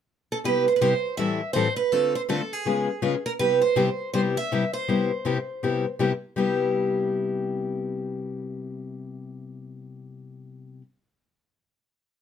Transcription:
steel-string acoustic guitar
0.32 A4
0.44 C3 G3 B3 E4 G4 B4
0.68 C5
0.76 B4
0.81 C3 G3 B3 E4 G4 C5
1.17 A2 E3 G3 C4 E4 A4 E5
1.53 A2 E3 G3 C4 E4 A4 C5
1.76 B4
1.92 D3 A3 C4 F4 A4
2.15 C5
2.29 D3 A3 C4 F4 A4
2.53 G#4
2.65 C#3 G#3 B3 F4 G#4
3.02 C#3 G#3 B3 F4 G#4
3.26 A#4
3.39 C3 G3 B3 E4 G4 B4
3.62 C5
3.76 C3 G3 B3 E4 G4
4.13 C3 G3 B3 E4 G4 C5
4.37 E5
4.52 C3 G3 B3 E4 G4
4.73 C5
4.88 C3 G3 B3 E4 G4
5.25 C3 G3 B3 E4 G4
5.63 C3 G3 B3 E4 G4
5.99 C3 G3 B3 E4 G4
6.36 C3 G3 B3 E4 G4

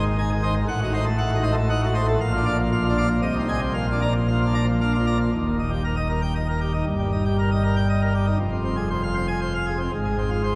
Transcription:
pipe organ
Already playing: G#1 G#2
0.02 D#3
0.18 D#4 G#5
0.31 D#3 G#4
0.43 C5 D#5
0.55 D#3
0.68 A1 A2 F#5
0.80 D#4 F#4
0.94 C5 D#5
1.06 A3
1.18 A3 F#5
1.31 F#4
1.35 D#4
1.43 C5 D#5
1.52 A3
1.57 A3
1.69 D#4 F#5
1.82 F#4
1.86 A3
1.95 C5 D#5
2.08 A3
2.21 A#1 A#2 F5
2.33 F4
2.37 D4
2.46 D5 F5
2.59 F3
2.72 F3 F5
2.85 F4
2.89 D4
2.98 D5 F5
3.06 F3
3.22 C2 C3 D#5
3.36 D#4
3.40 C4
3.48 D#5 G#5
3.61 C4
3.74 A#1 A#2 F5
3.88 F4
3.92 D4
4.02 D5 A#5
4.15 F3
4.28 F3 F5
4.42 F4
4.46 D4
4.54 D5 A#5
4.63 F3
4.68 F3
4.81 D4 F5
4.95 F3 F4
5.07 D5 A#5
5.20 F3
5.34 D#1 D#2
5.46 A#2
5.59 D#4
5.71 G4
5.84 A#4
5.96 D#5
6.09 A#4
6.22 G5
6.35 D#5
6.48 A#4
6.61 G4
6.74 D#4
6.86 G1 G2
6.99 G3
7.12 D#4
7.25 G4
7.39 A#4
7.52 D#5
7.64 A#4
7.76 G5
7.89 D#5
8.02 A#4
8.14 G4
8.27 D#4
8.39 F1 F2
8.52 C3
8.65 C4
8.77 G#4
8.90 C5
9.03 F5
9.15 C5
9.28 G#5
9.41 C5
9.54 F5
9.66 G#4
9.80 C4
9.92 G#1 G#2
10.05 G#3
10.18 C4
10.30 F4
10.44 C5

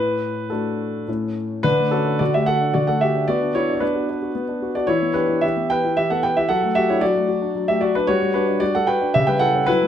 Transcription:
grand piano
Already playing: A2 B4
0.50 A3 D4 F#4 A4
1.08 A2 A3 C#4 E4
1.63 D3 D4 B4
1.78 A3
1.91 C#4 F#4 A4
2.06 D4
2.19 D3 F#4 D5
2.34 A3 G4 E5
2.46 F#4 A4 F#5
2.61 D4
2.74 D3 F#4 D5
2.87 A3 A4 F#5
3.01 F#4 G4 E5
3.15 D4
3.28 B3 F#4 D5
3.42 D4
3.55 E4 F#4 C#5
3.70 D4
3.75 C#5
3.80 B3 D4 B4
3.95 F#4
4.10 D4
4.22 F#4
4.35 B3
4.49 D4
4.62 F#4
4.75 D4 F#4 D5
4.87 E3 E4 C#5
5.02 B3
5.14 D4 G4 B4
5.29 E4
5.41 E3 G4 E5
5.56 B3
5.70 G4 B4 G5
5.84 E4
5.97 E3 G4 E5
6.10 B3 A4 F#5
6.23 G4 B4 G5
6.37 E4 G4 E5
6.49 F#3 A4 F#5
6.63 A3
6.75 F#4 G4 E5
6.90 D4 E4 C#5
7.01 F#3 F#4 D5
7.16 A3
7.29 F#4
7.42 D4
7.55 F#3
7.68 A3 G4 E5
7.81 F#4 D5
7.95 D4 B4
8.07 G3 F#4 C#5
8.22 G3
8.34 D4 F#4 B4
8.48 D4
8.60 G3 F#4 D5
8.75 G3 A4 F#5
8.87 F#4 B4 G5
9.01 D4
9.14 C#3 G4 E5
9.27 G3 B4 G5
9.39 E4 A4 F#5
9.54 C#4
9.66 F#3 E4 B4
9.81 A3

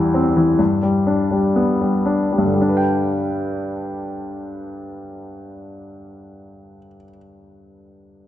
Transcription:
grand piano
Already playing: E2 E3 G3 C4
0.14 C4
0.36 E3
0.59 G2
0.82 G3
1.07 D4
1.31 G3
1.56 B3
1.81 G3
2.06 D4
2.32 G3
2.38 G2
2.45 D3
2.54 G3
2.61 D4
2.69 B4
2.77 G5

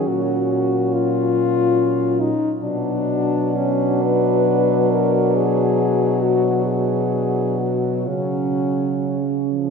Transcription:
french horn
Already playing: F#3 C#4
0.08 A#2 F#4
0.93 F4
2.21 D#4
2.63 B2 F#3 D4
3.56 C#4
4.03 B4
4.91 A#4
5.35 G#4
6.22 F#4
6.66 G#4
7.59 F#4
8.06 C#3 F#3 C#4
9.50 F3

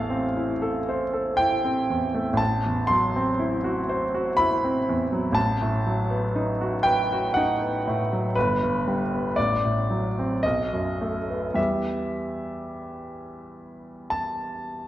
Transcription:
grand piano
Already playing: A1 E2 A3 F5 A5
0.10 C4
0.37 E4
0.62 A4
0.89 C5
1.14 A4
1.37 E4 G5
1.65 C4
1.90 E2
2.14 A3
2.33 A1
2.37 A5
2.66 E2
2.87 F#3 C6
3.16 C4
3.39 E4
3.64 F#4
3.89 C5
4.14 F#4
4.37 E4 B5
4.64 C4
4.89 E2
5.13 F#3
5.32 A1 A5
5.62 A2
5.86 F#3
6.10 B3
6.35 D#4
6.61 F#4
6.83 B4 G5
7.12 F#4
7.34 D#4 F#5
7.61 B3
7.87 A2
8.13 F#3
8.35 G1 B4
8.63 G2
8.87 G3
9.14 B3
9.36 A1 D5
9.64 A2
9.90 F#3
10.19 C4
10.43 B1 D#5
10.73 F#2
11.01 A3
11.29 B3
11.54 E2 G3 B3 G4 E5
14.10 A5

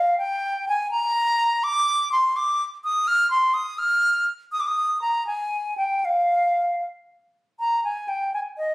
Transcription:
flute
Already playing: F5
0.18 G5
0.69 G#5
0.91 A#5
1.64 D6
2.12 C6
2.36 D6
2.84 D#6
3.07 F6
3.31 C6
3.54 D#6
3.78 F6
4.52 D#6
4.60 D6
4.67 D#6
5.02 A#5
5.27 G#5
5.77 G5
6.05 F5
7.59 A#5
7.84 G#5
8.08 G5
8.34 G#5
8.57 D#5

